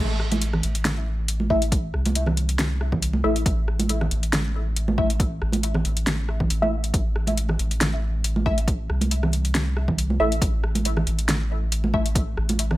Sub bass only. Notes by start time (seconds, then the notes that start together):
Already playing: A1
0.63 A1
1.94 C2
3.24 A1
3.46 A1
4.11 A1
5.41 A1
5.85 A1
6.50 A1
6.94 A1
7.59 A1
8.89 C2
10.20 A1
10.42 A1
11.07 A1
12.37 A1